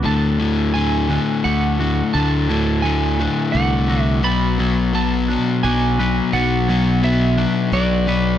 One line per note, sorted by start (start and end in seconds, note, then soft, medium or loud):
0.03 0.38 D2 medium
0.03 1.17 D2 medium
0.03 0.39 A2 medium
0.03 0.39 D3 medium
0.03 0.73 A5 medium
0.03 0.40 A6 medium
0.39 0.74 D2 medium
0.39 0.74 A2 medium
0.39 0.75 D3 medium
0.39 1.10 G#6 medium
0.74 1.08 D2 medium
0.74 1.09 A2 medium
0.74 1.10 D3 medium
0.74 1.44 G#5 medium
1.09 1.43 D2 medium
1.09 1.44 A2 medium
1.09 1.44 D3 medium
1.09 1.45 F#6 medium
1.44 1.78 D2 medium
1.44 2.01 D2 medium
1.44 1.79 A2 medium
1.44 1.80 D3 medium
1.44 3.20 A3 medium
1.44 2.13 F#5 medium
1.44 2.15 D6 medium
1.79 2.13 D2 medium
1.79 2.14 A2 medium
1.79 2.15 D3 medium
1.79 3.89 F#4 medium
2.14 2.48 D2 medium
2.14 3.27 D2 medium
2.14 2.49 A2 medium
2.14 2.49 D3 medium
2.14 2.82 A5 medium
2.14 2.50 A6 medium
2.49 2.83 D2 medium
2.49 2.84 A2 medium
2.49 2.84 D3 medium
2.49 3.20 G#6 medium
2.82 3.18 D2 medium
2.82 3.18 A2 medium
2.82 3.19 D3 medium
2.82 3.49 G#5 medium
3.19 3.52 D2 medium
3.19 3.53 A2 medium
3.19 3.54 D3 medium
3.19 3.55 F#6 medium
3.52 4.24 C2 medium
3.52 3.87 D2 medium
3.52 3.88 A2 medium
3.52 3.89 D3 medium
3.52 4.25 A3 medium
3.52 4.02 F#5 medium
3.52 4.25 D6 medium
3.88 4.22 D2 medium
3.88 4.22 A2 medium
3.88 4.23 D3 medium
3.88 5.65 F#4 medium
4.02 4.19 E5 medium
4.23 5.36 B1 medium
4.23 4.58 B2 medium
4.23 4.59 F#3 medium
4.23 4.59 B3 medium
4.23 4.95 B5 loud
4.23 4.59 A6 medium
4.58 4.93 B2 medium
4.58 4.94 F#3 medium
4.58 4.94 B3 medium
4.58 5.29 G#6 medium
4.93 5.28 B2 medium
4.93 5.29 F#3 loud
4.93 5.29 B3 loud
4.93 5.63 A5 medium
5.28 5.62 B2 medium
5.28 5.64 F#3 medium
5.28 5.64 B3 medium
5.28 7.38 D4 medium
5.28 5.64 F#6 medium
5.63 6.20 B1 medium
5.63 5.98 B2 medium
5.63 5.99 F#3 medium
5.63 5.99 B3 medium
5.63 7.73 F#4 medium
5.63 6.29 G#5 medium
5.63 6.34 D6 medium
5.99 6.33 B2 medium
5.99 6.34 F#3 medium
5.99 6.34 B3 medium
5.99 7.74 B4 medium
6.33 7.45 B1 medium
6.33 6.67 B2 medium
6.33 6.69 F#3 medium
6.33 6.69 B3 medium
6.33 7.04 F#5 medium
6.33 6.69 A6 medium
6.68 7.02 B2 medium
6.68 7.03 F#3 medium
6.68 7.02 B3 medium
6.68 7.38 G#6 medium
7.03 7.36 B2 medium
7.03 7.37 F#3 medium
7.03 7.37 B3 medium
7.03 7.70 E5 medium
7.37 7.71 B2 medium
7.37 7.73 F#3 medium
7.37 7.72 B3 medium
7.37 8.38 D4 medium
7.37 7.73 F#6 medium
7.72 8.38 B1 medium
7.72 8.06 B2 medium
7.72 8.08 F#3 medium
7.72 8.07 B3 medium
7.72 8.38 F#4 medium
7.72 8.38 D5 medium
7.72 8.38 D6 medium
8.07 8.38 B2 medium
8.07 8.38 F#3 medium
8.07 8.38 B3 medium
8.07 8.38 B4 medium